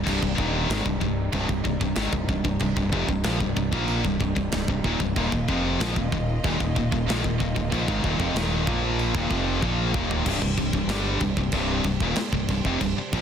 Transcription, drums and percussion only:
0.07 kick medium
0.07 china medium
0.07 crash loud
0.23 kick medium
0.38 kick medium
0.70 snare loud
0.70 china medium
0.86 kick loud
1.01 kick medium
1.32 kick loud
1.32 china medium
1.49 kick medium
1.65 kick medium
1.81 kick medium
1.95 snare loud
1.95 china medium
2.13 kick medium
2.29 kick medium
2.45 kick medium
2.59 kick medium
2.59 china medium
2.77 kick medium
2.93 kick medium
3.09 kick medium
3.24 snare loud
3.24 china medium
3.40 kick medium
3.57 kick medium
3.73 kick medium
3.88 china medium
4.05 kick medium
4.21 kick medium
4.37 kick medium
4.52 snare loud
4.52 china medium
4.68 kick medium
4.84 kick medium
5.00 kick medium
5.16 kick medium
5.16 china medium
5.32 kick medium
5.49 kick medium
5.80 snare loud
5.80 china medium
5.96 kick medium
6.12 kick medium
6.44 kick loud
6.44 china medium
6.60 kick medium
6.76 kick medium
6.92 kick medium
7.09 snare loud
7.09 china medium
7.24 kick medium
7.40 kick medium
7.56 kick medium
7.72 kick medium
7.72 china medium
7.88 kick medium
8.04 kick medium
8.20 kick medium
8.36 snare loud
8.36 china medium
8.67 kick medium
8.99 china medium
9.15 kick loud
9.31 kick medium
9.63 kick medium
9.94 kick medium
10.11 floor tom medium
10.26 kick loud
10.26 crash loud
10.26 crash medium
10.42 kick medium
10.58 kick medium
10.58 crash medium
10.73 kick medium
10.89 snare loud
10.89 crash medium
11.20 kick medium
11.20 crash medium
11.37 kick medium
11.52 kick medium
11.52 crash medium
11.84 kick medium
11.84 crash medium
12.00 kick medium
12.16 snare loud
12.16 crash medium
12.33 kick medium
12.49 kick medium
12.49 crash medium
12.65 kick medium
12.81 kick medium
12.81 crash medium
13.13 kick loud
13.13 crash medium

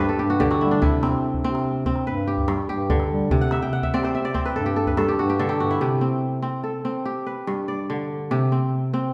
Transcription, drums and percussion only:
0.10 calabash click soft
0.41 calabash thump medium
0.51 calabash click medium
0.82 calabash thump medium
1.03 calabash click medium
1.13 calabash click soft
1.34 calabash thump medium
1.55 calabash click soft
1.86 calabash thump medium
1.96 calabash click soft
2.06 calabash click soft
2.37 calabash thump soft
2.37 calabash click soft
2.48 calabash click medium
2.58 calabash click soft
2.90 calabash thump medium
3.00 calabash click soft
3.30 calabash thump medium
3.51 calabash click medium
3.72 calabash click soft
3.83 calabash thump soft
3.93 calabash click soft
4.04 calabash click soft
4.13 calabash click soft
4.24 calabash click soft
4.35 calabash thump medium
4.35 calabash click soft
4.46 calabash click soft
4.87 calabash thump soft
4.87 calabash click soft
4.97 calabash click medium
5.08 calabash click soft
5.29 calabash click soft
5.49 calabash click soft
5.70 calabash click soft

